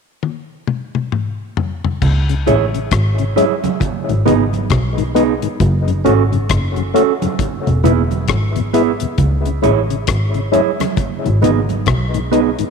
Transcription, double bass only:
0, 0, Header, 1, 2, 480
1, 0, Start_track
1, 0, Key_signature, 4, "minor"
1, 0, Tempo, 895656
1, 1081, Time_signature, 4, 2, 24, 8
1, 6806, End_track
2, 0, Start_track
2, 0, Title_t, "Double bass"
2, 0, Program_c, 0, 43
2, 1084, Note_on_c, 0, 37, 99
2, 1292, Note_off_c, 0, 37, 0
2, 1326, Note_on_c, 0, 33, 73
2, 1533, Note_off_c, 0, 33, 0
2, 1566, Note_on_c, 0, 32, 90
2, 1772, Note_off_c, 0, 32, 0
2, 2193, Note_on_c, 0, 32, 77
2, 2272, Note_off_c, 0, 32, 0
2, 2288, Note_on_c, 0, 32, 85
2, 2494, Note_off_c, 0, 32, 0
2, 2524, Note_on_c, 0, 35, 92
2, 2859, Note_off_c, 0, 35, 0
2, 3005, Note_on_c, 0, 30, 112
2, 3212, Note_off_c, 0, 30, 0
2, 3247, Note_on_c, 0, 32, 88
2, 3453, Note_off_c, 0, 32, 0
2, 3484, Note_on_c, 0, 30, 81
2, 3691, Note_off_c, 0, 30, 0
2, 4114, Note_on_c, 0, 28, 88
2, 4193, Note_off_c, 0, 28, 0
2, 4206, Note_on_c, 0, 28, 82
2, 4412, Note_off_c, 0, 28, 0
2, 4442, Note_on_c, 0, 32, 70
2, 4777, Note_off_c, 0, 32, 0
2, 4923, Note_on_c, 0, 37, 86
2, 5131, Note_off_c, 0, 37, 0
2, 5168, Note_on_c, 0, 33, 85
2, 5374, Note_off_c, 0, 33, 0
2, 5404, Note_on_c, 0, 32, 81
2, 5611, Note_off_c, 0, 32, 0
2, 6037, Note_on_c, 0, 32, 86
2, 6114, Note_off_c, 0, 32, 0
2, 6129, Note_on_c, 0, 32, 88
2, 6334, Note_off_c, 0, 32, 0
2, 6363, Note_on_c, 0, 35, 91
2, 6698, Note_off_c, 0, 35, 0
2, 6806, End_track
0, 0, End_of_file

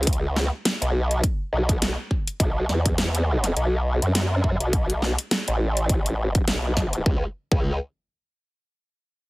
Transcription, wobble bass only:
0, 0, Header, 1, 2, 480
1, 0, Start_track
1, 0, Tempo, 582524
1, 59, Time_signature, 4, 2, 24, 8
1, 7660, End_track
2, 0, Start_track
2, 0, Title_t, "Wobble bass"
2, 0, Program_c, 0, 39
2, 0, Note_on_c, 0, 37, 97
2, 411, Note_off_c, 0, 37, 0
2, 672, Note_on_c, 0, 35, 97
2, 1001, Note_off_c, 0, 35, 0
2, 1258, Note_on_c, 0, 35, 92
2, 1612, Note_off_c, 0, 35, 0
2, 1978, Note_on_c, 0, 35, 98
2, 2201, Note_off_c, 0, 35, 0
2, 2218, Note_on_c, 0, 40, 97
2, 2922, Note_off_c, 0, 40, 0
2, 2936, Note_on_c, 0, 35, 97
2, 3291, Note_off_c, 0, 35, 0
2, 3311, Note_on_c, 0, 42, 93
2, 3771, Note_off_c, 0, 42, 0
2, 3793, Note_on_c, 0, 35, 98
2, 4252, Note_off_c, 0, 35, 0
2, 4514, Note_on_c, 0, 33, 97
2, 4842, Note_off_c, 0, 33, 0
2, 4858, Note_on_c, 0, 33, 96
2, 5321, Note_off_c, 0, 33, 0
2, 5337, Note_on_c, 0, 35, 99
2, 5801, Note_off_c, 0, 35, 0
2, 5817, Note_on_c, 0, 37, 100
2, 5963, Note_off_c, 0, 37, 0
2, 6193, Note_on_c, 0, 37, 96
2, 6417, Note_off_c, 0, 37, 0
2, 7660, End_track
0, 0, End_of_file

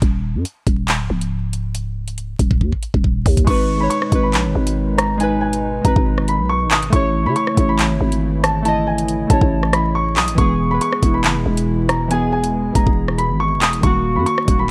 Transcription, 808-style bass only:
0, 0, Header, 1, 2, 480
1, 0, Start_track
1, 0, Key_signature, 5, "minor"
1, 0, Tempo, 431655
1, 22, Time_signature, 4, 2, 24, 8
1, 16354, End_track
2, 0, Start_track
2, 0, Title_t, "808-style bass"
2, 0, Program_c, 0, 38
2, 22, Note_on_c, 0, 27, 108
2, 389, Note_on_c, 0, 42, 99
2, 406, Note_off_c, 0, 27, 0
2, 496, Note_off_c, 0, 42, 0
2, 741, Note_on_c, 0, 27, 106
2, 1109, Note_on_c, 0, 25, 101
2, 1126, Note_off_c, 0, 27, 0
2, 1216, Note_off_c, 0, 25, 0
2, 1223, Note_on_c, 0, 25, 104
2, 2618, Note_off_c, 0, 25, 0
2, 2661, Note_on_c, 0, 27, 103
2, 2902, Note_on_c, 0, 39, 97
2, 2919, Note_off_c, 0, 27, 0
2, 3023, Note_off_c, 0, 39, 0
2, 3269, Note_on_c, 0, 27, 104
2, 3608, Note_off_c, 0, 27, 0
2, 3622, Note_on_c, 0, 39, 103
2, 3853, Note_off_c, 0, 39, 0
2, 3863, Note_on_c, 0, 32, 114
2, 4323, Note_off_c, 0, 32, 0
2, 4581, Note_on_c, 0, 32, 107
2, 4823, Note_on_c, 0, 34, 100
2, 4839, Note_off_c, 0, 32, 0
2, 4950, Note_on_c, 0, 32, 100
2, 4966, Note_off_c, 0, 34, 0
2, 5057, Note_off_c, 0, 32, 0
2, 5063, Note_on_c, 0, 32, 105
2, 6458, Note_off_c, 0, 32, 0
2, 6502, Note_on_c, 0, 32, 106
2, 6624, Note_off_c, 0, 32, 0
2, 6629, Note_on_c, 0, 32, 110
2, 7109, Note_on_c, 0, 35, 104
2, 7126, Note_off_c, 0, 32, 0
2, 7406, Note_on_c, 0, 32, 98
2, 7422, Note_off_c, 0, 35, 0
2, 7687, Note_off_c, 0, 32, 0
2, 7702, Note_on_c, 0, 33, 110
2, 8069, Note_on_c, 0, 49, 104
2, 8086, Note_off_c, 0, 33, 0
2, 8176, Note_off_c, 0, 49, 0
2, 8421, Note_on_c, 0, 33, 104
2, 8789, Note_on_c, 0, 32, 100
2, 8806, Note_off_c, 0, 33, 0
2, 8896, Note_off_c, 0, 32, 0
2, 8902, Note_on_c, 0, 32, 107
2, 10297, Note_off_c, 0, 32, 0
2, 10341, Note_on_c, 0, 33, 104
2, 10464, Note_off_c, 0, 33, 0
2, 10468, Note_on_c, 0, 33, 105
2, 11302, Note_on_c, 0, 35, 96
2, 11319, Note_off_c, 0, 33, 0
2, 11429, Note_on_c, 0, 33, 102
2, 11446, Note_off_c, 0, 35, 0
2, 11536, Note_off_c, 0, 33, 0
2, 11542, Note_on_c, 0, 28, 113
2, 12003, Note_off_c, 0, 28, 0
2, 12261, Note_on_c, 0, 28, 107
2, 12502, Note_on_c, 0, 30, 98
2, 12518, Note_off_c, 0, 28, 0
2, 12629, Note_on_c, 0, 28, 100
2, 12646, Note_off_c, 0, 30, 0
2, 12736, Note_off_c, 0, 28, 0
2, 12742, Note_on_c, 0, 28, 102
2, 14137, Note_off_c, 0, 28, 0
2, 14181, Note_on_c, 0, 28, 101
2, 14301, Note_off_c, 0, 28, 0
2, 14308, Note_on_c, 0, 28, 109
2, 14789, Note_on_c, 0, 32, 105
2, 14805, Note_off_c, 0, 28, 0
2, 15085, Note_on_c, 0, 28, 97
2, 15102, Note_off_c, 0, 32, 0
2, 15367, Note_off_c, 0, 28, 0
2, 15382, Note_on_c, 0, 27, 109
2, 15748, Note_on_c, 0, 42, 100
2, 15765, Note_off_c, 0, 27, 0
2, 15856, Note_off_c, 0, 42, 0
2, 16101, Note_on_c, 0, 27, 105
2, 16354, Note_off_c, 0, 27, 0
2, 16354, End_track
0, 0, End_of_file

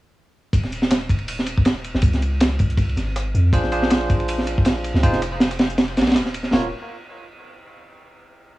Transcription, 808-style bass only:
0, 0, Header, 1, 2, 480
1, 0, Start_track
1, 0, Tempo, 375000
1, 682, Time_signature, 4, 2, 24, 8
1, 10989, End_track
2, 0, Start_track
2, 0, Title_t, "808-style bass"
2, 0, Program_c, 0, 38
2, 679, Note_on_c, 0, 27, 100
2, 2470, Note_off_c, 0, 27, 0
2, 2491, Note_on_c, 0, 32, 99
2, 2590, Note_off_c, 0, 32, 0
2, 2596, Note_on_c, 0, 37, 105
2, 3781, Note_off_c, 0, 37, 0
2, 3800, Note_on_c, 0, 32, 103
2, 4263, Note_off_c, 0, 32, 0
2, 4280, Note_on_c, 0, 41, 98
2, 4499, Note_off_c, 0, 41, 0
2, 4514, Note_on_c, 0, 34, 103
2, 6307, Note_off_c, 0, 34, 0
2, 6328, Note_on_c, 0, 38, 103
2, 6429, Note_off_c, 0, 38, 0
2, 6445, Note_on_c, 0, 29, 101
2, 7640, Note_on_c, 0, 34, 102
2, 7659, Note_off_c, 0, 29, 0
2, 7883, Note_on_c, 0, 27, 91
2, 7902, Note_off_c, 0, 34, 0
2, 8345, Note_off_c, 0, 27, 0
2, 8361, Note_on_c, 0, 27, 100
2, 8585, Note_off_c, 0, 27, 0
2, 10989, End_track
0, 0, End_of_file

